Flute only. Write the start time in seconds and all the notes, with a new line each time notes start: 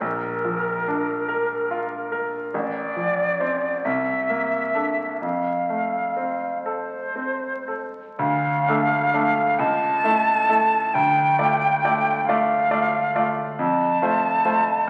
0.02 A#4
2.53 D5
3.84 E5
5.21 F5
6.63 C5
8.19 F5
9.59 A5
10.94 G5
12.25 F5
13.60 A5